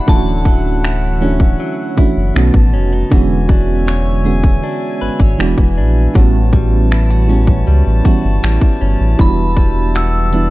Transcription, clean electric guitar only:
0.00 0.15 G3 medium
0.00 0.87 D4 medium
0.00 0.15 F#4 medium
0.08 2.43 D3 medium
0.46 1.59 F#3 medium
0.84 1.97 E4 medium
1.22 2.43 C#4 medium
1.60 3.15 F#3 medium
1.98 2.43 E4 medium
2.36 3.19 B2 medium
2.74 2.93 C#4 medium
2.93 3.19 D#4 medium
3.12 5.39 E3 medium
3.50 4.62 D4 medium
3.88 5.01 C#5 medium
4.25 5.47 G#4 medium
4.64 5.47 D4 medium
5.01 5.21 B4 medium
5.21 5.47 C#5 medium
5.40 7.14 E3 medium
5.78 6.23 D4 medium
6.15 9.19 A2 medium
6.53 7.67 G3 medium
6.91 7.11 E4 medium
7.11 8.04 F#4 medium
7.29 8.80 C#4 medium
7.67 8.43 G3 medium
8.05 9.60 F#4 medium
8.43 9.57 G3 medium
8.81 9.27 C#4 medium
9.19 10.50 E3 medium
9.57 10.50 G3 medium
9.95 10.50 F#4 medium
10.33 10.50 D4 medium

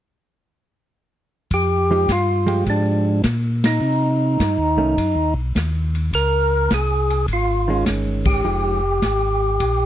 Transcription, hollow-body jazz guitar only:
1.91 2.07 F3 medium
1.91 2.07 G#3 medium
1.91 2.07 D#4 medium
1.91 2.08 G4 medium
2.47 3.20 F3 medium
2.47 3.20 G#3 medium
2.47 3.20 G4 medium
4.78 4.95 D#3 medium
4.78 4.95 A3 medium
4.78 4.95 C#4 medium
7.68 8.41 D#3 medium
7.68 8.41 G#3 medium
7.68 8.42 C#4 medium
8.44 8.80 F3 soft
8.44 8.80 G#3 soft
8.44 8.80 D#4 soft
8.44 8.80 G4 soft

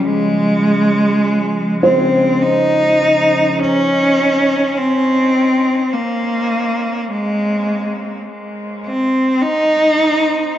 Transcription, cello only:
0.04 1.81 G#3 loud
1.83 2.44 C4 medium
2.42 3.61 D#4 loud
3.59 4.78 C#4 loud
4.77 5.95 C4 medium
5.93 7.10 A#3 medium
7.10 8.25 G#3 medium
8.86 9.43 C4 medium
9.42 10.58 D#4 loud

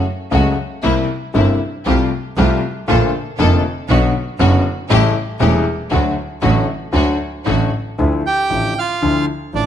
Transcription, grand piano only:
0.31 0.54 C#2 medium
0.31 0.53 C#3 medium
0.31 0.54 F#3 medium
0.31 0.53 A3 medium
0.31 0.54 F#4 medium
0.83 1.05 C2 medium
0.83 1.05 C3 medium
0.83 1.05 G3 medium
0.83 1.05 A#3 medium
0.83 1.05 E4 medium
1.34 1.56 G1 medium
1.34 1.56 G2 medium
1.34 1.56 C3 medium
1.34 1.56 G3 medium
1.34 1.56 A#3 medium
1.34 1.56 E4 medium
1.86 2.08 C2 medium
1.86 2.08 C3 medium
1.86 2.08 G3 medium
1.86 2.08 A3 medium
1.86 2.08 F4 medium
2.38 2.60 C2 medium
2.38 2.60 C3 medium
2.38 2.59 G3 medium
2.38 2.59 A3 medium
2.38 2.59 F4 medium
2.88 3.10 A#1 medium
2.88 3.10 A#2 medium
2.88 3.10 D3 medium
2.88 3.09 A3 medium
2.88 3.10 A#3 medium
2.88 3.10 F4 medium
3.38 3.61 F1 medium
3.38 3.60 F2 medium
3.38 3.60 D3 medium
3.38 3.60 A3 medium
3.38 3.61 A#3 medium
3.38 3.61 F4 medium
3.90 4.11 B1 medium
3.90 4.11 B2 medium
3.90 4.11 D3 medium
3.90 4.11 F#3 medium
3.90 4.11 B3 medium
3.90 4.11 F#4 medium
4.40 4.61 F#1 medium
4.40 4.61 F#2 medium
4.40 4.61 D3 medium
4.40 4.61 F#3 medium
4.40 4.61 B3 medium
4.40 4.61 F#4 medium
4.90 5.12 A1 medium
4.90 5.12 A2 medium
4.90 5.12 C#3 medium
4.90 5.12 G3 medium
4.90 5.12 A3 medium
4.90 5.12 E4 medium
5.40 5.62 E1 medium
5.40 5.62 E2 medium
5.40 5.62 C#3 medium
5.40 5.62 G3 medium
5.40 5.62 A3 medium
5.40 5.62 E4 medium
5.91 6.12 D2 medium
5.91 6.13 D3 medium
5.91 6.12 F#3 medium
5.91 6.13 A3 medium
5.91 6.13 F#4 medium
6.42 6.64 A1 medium
6.42 6.64 A2 medium
6.42 6.63 D3 medium
6.42 6.64 F#3 medium
6.42 6.64 A3 medium
6.42 6.64 F#4 medium
6.93 7.15 D2 medium
6.93 7.15 D3 medium
6.93 7.15 F#3 medium
6.93 7.15 A3 medium
6.93 7.15 F#4 medium
7.45 7.68 A1 medium
7.45 7.68 A2 medium
7.45 7.68 D3 medium
7.45 7.68 F#3 medium
7.45 7.68 A3 medium
7.45 7.68 F#4 medium
7.98 8.20 D2 medium
7.98 8.20 D3 medium
7.98 8.20 F3 medium
7.98 8.20 A3 soft
7.98 8.20 E4 medium
8.50 8.72 A1 soft
8.50 8.72 A2 soft
8.50 8.72 D3 soft
8.50 8.72 F3 soft
8.50 8.72 A3 soft
8.50 8.72 E4 soft
9.02 9.24 D2 medium
9.02 9.24 D3 medium
9.02 9.24 F3 medium
9.02 9.24 A3 medium
9.02 9.24 E4 medium
9.53 9.66 A1 soft
9.53 9.66 A2 soft
9.53 9.66 D3 soft
9.53 9.66 F3 soft
9.53 9.66 A3 soft
9.53 9.66 E4 soft

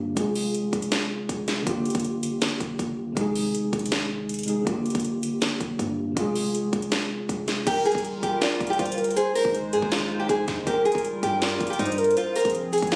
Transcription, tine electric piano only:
0.00 0.11 D3 medium
0.00 0.13 A#3 medium
0.00 0.14 F4 medium
0.00 0.16 G4 medium
0.12 1.61 C3 medium
0.12 1.63 G#3 medium
0.18 1.64 F4 medium
0.18 1.66 G#4 medium
1.62 3.11 D3 medium
1.62 3.13 A#3 medium
1.68 3.14 F4 medium
1.68 3.16 G4 medium
3.12 4.43 C3 medium
3.12 4.45 G#3 medium
3.18 4.46 D#4 medium
3.18 4.47 G#4 medium
4.45 4.65 C3 medium
4.45 4.66 G#3 medium
4.45 4.67 D#4 medium
4.49 4.67 G#4 medium
4.62 6.11 D3 medium
4.62 6.13 A#3 medium
4.68 6.14 F4 medium
4.68 6.16 G4 medium
6.12 7.61 C3 medium
6.12 7.63 G#3 medium
6.18 7.64 F4 medium
6.18 7.66 G#4 loud

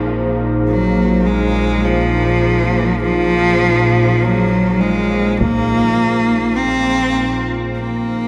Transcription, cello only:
0.68 1.28 F#3 medium
1.26 1.86 G#3 medium
1.85 3.03 F3 medium
3.03 4.23 F3 loud
4.22 4.81 F#3 medium
4.80 5.39 G#3 medium
5.38 6.57 A#3 loud
6.56 7.44 C4 loud
7.75 8.28 A#3 loud

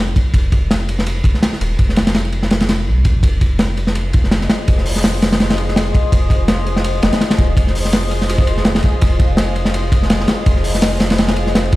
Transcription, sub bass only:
0.00 0.15 F1 loud
0.34 1.23 F1 loud
1.24 1.33 F1 medium
1.61 1.77 D#1 loud
1.79 2.88 F1 loud
2.87 3.13 C2 medium
3.15 3.22 A#1 medium
3.23 4.48 F1 loud
4.68 5.93 F1 medium
6.12 7.01 F1 loud
7.03 7.12 F1 medium
7.38 7.55 D#1 loud
7.57 8.82 F1 loud
9.02 10.27 F1 loud
10.46 11.71 F1 loud

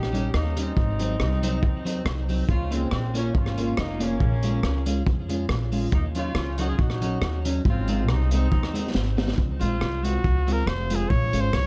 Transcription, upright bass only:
0.00 0.28 A#1 medium
0.34 0.70 D#2 medium
0.77 1.13 G#1 loud
1.20 1.56 C2 loud
1.63 1.99 D#2 medium
2.05 2.42 C2 medium
2.49 2.85 C#2 loud
2.92 3.28 A#1 medium
3.35 3.71 G#1 medium
3.78 4.21 F1 medium
4.21 4.57 A#1 loud
4.63 5.00 C#2 medium
5.07 5.43 F2 medium
5.49 5.86 A#1 medium
5.92 6.29 D#2 loud
6.35 6.72 C#2 medium
6.79 7.15 A#1 medium
7.21 7.58 D#2 medium
7.65 8.08 G#1 loud
8.08 8.45 C2 medium
8.52 8.88 D#2 medium
8.94 9.31 G#1 medium
9.38 9.57 C#2 medium
9.61 9.78 A#1 medium
9.80 10.17 C2 medium
10.24 10.61 C#2 medium
10.66 11.03 F1 medium
11.11 11.30 A#1 loud
11.33 11.50 G#1 medium
11.53 11.67 C2 medium

